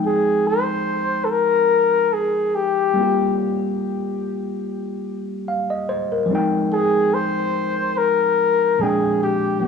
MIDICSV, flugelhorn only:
0, 0, Header, 1, 2, 480
1, 0, Start_track
1, 0, Key_signature, -4, "minor"
1, 0, Tempo, 833333
1, 1708, Time_signature, 4, 2, 24, 8
1, 5573, End_track
2, 0, Start_track
2, 0, Title_t, "Flugelhorn"
2, 0, Program_c, 0, 56
2, 37, Note_on_c, 0, 68, 77
2, 275, Note_on_c, 0, 72, 88
2, 284, Note_off_c, 0, 68, 0
2, 717, Note_on_c, 0, 69, 54
2, 725, Note_off_c, 0, 72, 0
2, 753, Note_on_c, 0, 70, 97
2, 762, Note_off_c, 0, 69, 0
2, 1229, Note_on_c, 0, 68, 77
2, 1237, Note_off_c, 0, 70, 0
2, 1472, Note_on_c, 0, 67, 84
2, 1480, Note_off_c, 0, 68, 0
2, 1950, Note_off_c, 0, 67, 0
2, 3877, Note_on_c, 0, 68, 90
2, 4113, Note_on_c, 0, 72, 104
2, 4122, Note_off_c, 0, 68, 0
2, 4594, Note_on_c, 0, 70, 87
2, 4603, Note_off_c, 0, 72, 0
2, 5078, Note_on_c, 0, 68, 72
2, 5087, Note_off_c, 0, 70, 0
2, 5313, Note_off_c, 0, 68, 0
2, 5318, Note_on_c, 0, 67, 77
2, 5573, Note_off_c, 0, 67, 0
2, 5573, End_track
0, 0, End_of_file